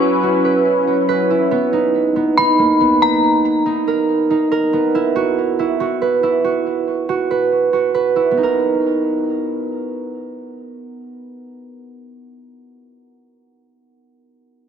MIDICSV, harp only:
0, 0, Header, 1, 2, 480
1, 0, Start_track
1, 0, Key_signature, 5, "major"
1, 0, Tempo, 428571
1, 1696, Time_signature, 4, 2, 24, 8
1, 16451, End_track
2, 0, Start_track
2, 0, Title_t, "Harp"
2, 0, Program_c, 0, 46
2, 0, Note_on_c, 0, 59, 83
2, 0, Note_on_c, 0, 64, 87
2, 0, Note_on_c, 0, 66, 84
2, 0, Note_on_c, 0, 71, 85
2, 254, Note_off_c, 0, 66, 0
2, 258, Note_on_c, 0, 66, 88
2, 494, Note_off_c, 0, 71, 0
2, 499, Note_on_c, 0, 71, 86
2, 972, Note_off_c, 0, 66, 0
2, 976, Note_on_c, 0, 66, 77
2, 1094, Note_off_c, 0, 59, 0
2, 1212, Note_off_c, 0, 71, 0
2, 1216, Note_on_c, 0, 71, 97
2, 1456, Note_off_c, 0, 64, 0
2, 1460, Note_on_c, 0, 64, 80
2, 1693, Note_on_c, 0, 59, 95
2, 1934, Note_on_c, 0, 63, 85
2, 2002, Note_off_c, 0, 64, 0
2, 2413, Note_off_c, 0, 59, 0
2, 2418, Note_on_c, 0, 59, 73
2, 2660, Note_off_c, 0, 63, 0
2, 2664, Note_on_c, 0, 63, 92
2, 2897, Note_on_c, 0, 58, 79
2, 2965, Note_off_c, 0, 71, 0
2, 3136, Note_off_c, 0, 59, 0
2, 3141, Note_on_c, 0, 59, 83
2, 3373, Note_off_c, 0, 63, 0
2, 3377, Note_on_c, 0, 63, 78
2, 3705, Note_off_c, 0, 66, 0
2, 4091, Note_off_c, 0, 63, 0
2, 4096, Note_on_c, 0, 63, 83
2, 4339, Note_on_c, 0, 70, 83
2, 4816, Note_off_c, 0, 63, 0
2, 4820, Note_on_c, 0, 63, 79
2, 5052, Note_off_c, 0, 70, 0
2, 5056, Note_on_c, 0, 70, 92
2, 5124, Note_off_c, 0, 59, 0
2, 5299, Note_on_c, 0, 59, 83
2, 5366, Note_off_c, 0, 58, 0
2, 5542, Note_on_c, 0, 64, 93
2, 5609, Note_off_c, 0, 63, 0
2, 5774, Note_on_c, 0, 66, 90
2, 6258, Note_off_c, 0, 64, 0
2, 6263, Note_on_c, 0, 64, 79
2, 6493, Note_off_c, 0, 66, 0
2, 6497, Note_on_c, 0, 66, 94
2, 6737, Note_on_c, 0, 71, 84
2, 6804, Note_off_c, 0, 70, 0
2, 6974, Note_off_c, 0, 64, 0
2, 6979, Note_on_c, 0, 64, 88
2, 7212, Note_off_c, 0, 66, 0
2, 7216, Note_on_c, 0, 66, 81
2, 7935, Note_off_c, 0, 66, 0
2, 7940, Note_on_c, 0, 66, 89
2, 8178, Note_off_c, 0, 71, 0
2, 8183, Note_on_c, 0, 71, 82
2, 8652, Note_off_c, 0, 66, 0
2, 8657, Note_on_c, 0, 66, 78
2, 8777, Note_off_c, 0, 59, 0
2, 8893, Note_off_c, 0, 71, 0
2, 8897, Note_on_c, 0, 71, 94
2, 9134, Note_off_c, 0, 64, 0
2, 9138, Note_on_c, 0, 64, 80
2, 9310, Note_on_c, 0, 59, 76
2, 9377, Note_on_c, 0, 63, 72
2, 9443, Note_on_c, 0, 70, 83
2, 9444, Note_off_c, 0, 64, 0
2, 9510, Note_off_c, 0, 71, 0
2, 11386, Note_off_c, 0, 66, 0
2, 14269, Note_off_c, 0, 59, 0
2, 14335, Note_off_c, 0, 63, 0
2, 14402, Note_off_c, 0, 70, 0
2, 16451, End_track
0, 0, End_of_file